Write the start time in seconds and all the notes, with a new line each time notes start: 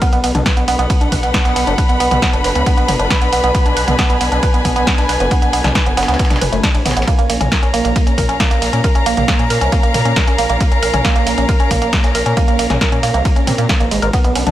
0.01 B3 D4, kick, closed hi-hat, ride
0.09 B1 B3 B4, closed hi-hat, ride
0.24 B1 B3, closed hi-hat, open hi-hat, ride
0.35 B1 D4, closed hi-hat, mid tom, ride
0.46 B4, kick, snare, closed hi-hat, ride
0.52 F#5
0.57 B1 B3, closed hi-hat, ride
0.63 B5
0.68 B1 B3, closed hi-hat, open hi-hat, ride
0.79 B1 B3, closed hi-hat, ride
0.90 B3, kick, closed hi-hat, ride
1.01 B1 D4, closed hi-hat, ride
1.12 B1 B4, kick, closed hi-hat, open hi-hat, mid tom, ride
1.23 B1 B3, closed hi-hat, ride
1.34 B3, kick, snare, closed hi-hat, ride
1.45 B1 B3, snare, closed hi-hat, ride
1.56 B1 B3, snare, open hi-hat, ride
1.67 F#1 D4, closed hi-hat, ride
1.78 B4, kick, closed hi-hat, ride
1.89 B1 B3, closed hi-hat, ride
2.00 B1 B3, closed hi-hat, open hi-hat, ride
2.11 B1 B3, closed hi-hat, mid tom, ride
2.22 B3, kick, snare, closed hi-hat, ride
2.33 F#1 D4, closed hi-hat, ride
2.44 F#1 B4, snare, closed hi-hat, open hi-hat, ride
2.55 C#2 B3, closed hi-hat, ride
2.66 B3, kick, closed hi-hat, ride
2.77 B1 B3, closed hi-hat, ride
2.88 F#1 B3, closed hi-hat, open hi-hat, mid tom, ride
2.99 F#1 D4, closed hi-hat, ride
3.10 B4, kick, snare, closed hi-hat, ride
3.21 B1 B3, closed hi-hat, ride
3.33 B1 B3, closed hi-hat, open hi-hat, ride
3.39 G#5
3.44 B1 B3, closed hi-hat, ride
3.55 B3, kick, closed hi-hat, ride
3.66 B1 D4, closed hi-hat, ride
3.77 B1 B4, closed hi-hat, open hi-hat, ride
3.88 B1 B3, closed hi-hat, mid tom, ride
3.99 B3, kick, snare, closed hi-hat, ride
4.10 B1 B3, closed hi-hat, ride
4.21 B1 B3, closed hi-hat, open hi-hat, ride
4.32 B1 D4, closed hi-hat, ride
4.43 B4, kick, closed hi-hat, ride
4.54 B1 B3, closed hi-hat, ride
4.65 B1 B3, kick, closed hi-hat, open hi-hat, mid tom, ride
4.76 B1 B3, closed hi-hat, ride
4.87 B3, kick, snare, closed hi-hat, ride
4.98 B1 D4, snare, closed hi-hat, ride
5.09 B1 B4, snare, open hi-hat, ride
5.20 F#1 B3, closed hi-hat, ride
5.31 B3, kick, closed hi-hat, ride
5.42 B1 B3, closed hi-hat, ride
5.53 B1 B3, closed hi-hat, open hi-hat, ride
5.64 B1 D4, snare, closed hi-hat, mid tom, ride
5.75 B4, kick, snare, closed hi-hat, ride
5.86 F#1 B3, closed hi-hat, ride
5.97 F#1 B3, snare, closed hi-hat, open hi-hat, ride
6.03 snare, closed hi-hat
6.08 C#2 B3, snare, closed hi-hat, ride
6.14 snare, closed hi-hat
6.19 B3, kick, snare, closed hi-hat, ride
6.25 snare, closed hi-hat
6.30 B1 D4, snare, closed hi-hat, mid tom, ride
6.36 snare, closed hi-hat
6.41 F#1 B4, closed hi-hat, open hi-hat, mid tom, ride
6.52 F#1 A3, closed hi-hat, ride
6.63 D4, kick, snare, closed hi-hat, ride
6.74 A1 D4, closed hi-hat, ride
6.85 A1 B3, snare, closed hi-hat, open hi-hat, mid tom, ride
6.91 snare, closed hi-hat
6.96 A1 B3, closed hi-hat, ride
7.02 snare, closed hi-hat
7.07 A#3 C#4, kick, closed hi-hat, ride
7.18 A#1 A#3, closed hi-hat, ride
7.29 A#1 A#3 A#5, closed hi-hat, open hi-hat, ride
7.33 A#4
7.41 A#1 C#4, closed hi-hat, mid tom, ride
7.49 A#4 F5, kick, snare, closed hi-hat, ride
7.62 A#1 C#4, closed hi-hat, ride
7.74 A#1 A#3, closed hi-hat, open hi-hat, ride
7.85 A#1 A#3, closed hi-hat, ride
7.96 A#3, kick, closed hi-hat, ride
8.07 A#1 C#4, closed hi-hat, ride
8.18 A#1 A#4, kick, closed hi-hat, open hi-hat, mid tom, ride
8.29 A#1 C#4, closed hi-hat, ride
8.40 A#3, kick, snare, closed hi-hat, ride
8.51 A#1 A#3, snare, closed hi-hat, ride
8.62 A#1 A#3, snare, open hi-hat, ride
8.73 A#2 C#4, closed hi-hat, ride
8.84 A#4, kick, closed hi-hat, ride
8.95 A#1 C#4, closed hi-hat, ride
9.06 A#1 A#3, closed hi-hat, open hi-hat, ride
9.17 A#1 A#3, closed hi-hat, mid tom, ride
9.28 A#3, kick, snare, closed hi-hat, ride
9.39 A#2 C#4, closed hi-hat, ride
9.50 A#2 A#4, snare, closed hi-hat, open hi-hat, ride
9.61 C2 C#4, closed hi-hat, ride
9.72 A#3, kick, closed hi-hat, ride
9.83 A#1 A#3, closed hi-hat, ride
9.94 A#2 A#3, closed hi-hat, open hi-hat, mid tom, ride
10.05 A#2 C#4, closed hi-hat, ride
10.16 A#4, kick, snare, closed hi-hat, ride
10.27 A#1 C#4, closed hi-hat, ride
10.38 A#1 A#3, closed hi-hat, open hi-hat, ride
10.49 A#1 A#3, closed hi-hat, ride
10.60 A#3, kick, closed hi-hat, ride
10.71 A#1 C#4, closed hi-hat, ride
10.82 A#1 A#4, closed hi-hat, open hi-hat, ride
10.93 A#1 C#4, closed hi-hat, mid tom, ride
11.05 A#3, kick, snare, closed hi-hat, ride
11.16 A#1 A#3, closed hi-hat, ride
11.27 A#1 A#3, closed hi-hat, open hi-hat, ride
11.38 A#1 C#4, closed hi-hat, ride
11.49 A#4, kick, closed hi-hat, ride
11.60 A#1 C#4, closed hi-hat, ride
11.71 A#1 A#3, kick, closed hi-hat, open hi-hat, mid tom, ride
11.82 A#1 A#3, closed hi-hat, ride
11.93 A#3, kick, snare, closed hi-hat, ride
12.04 A#1 C#4, snare, closed hi-hat, ride
12.15 A#1 A#4, snare, open hi-hat, ride
12.26 A#2 C#4, closed hi-hat, ride
12.37 A#3, kick, closed hi-hat, ride
12.48 A#1 A#3, closed hi-hat, ride
12.59 A#1 A#3, closed hi-hat, open hi-hat, ride
12.70 A#1 C#4, snare, closed hi-hat, mid tom, ride
12.81 A#4, kick, snare, closed hi-hat, ride
12.92 A#2 C#4, closed hi-hat, ride
13.03 A#2 A#3, snare, closed hi-hat, open hi-hat, ride
13.14 C2 A#3, closed hi-hat, ride
13.25 A#3, kick, closed hi-hat, ride
13.36 A#1 C#4, closed hi-hat, ride
13.47 A#2 C4, closed hi-hat, open hi-hat, mid tom, ride
13.58 A#2 A#3, closed hi-hat, ride
13.69 A#3, kick, snare, closed hi-hat, ride
13.80 G#1 A#3, closed hi-hat, ride
13.91 G#1 G#3, closed hi-hat, open hi-hat, ride
14.02 G#1 A#4, closed hi-hat, ride
14.13 B3 D4, kick, closed hi-hat, ride
14.24 B1 B3 B4, closed hi-hat, ride
14.35 B1 C#4, closed hi-hat, open hi-hat, ride
14.47 B1 D4, closed hi-hat, mid tom, ride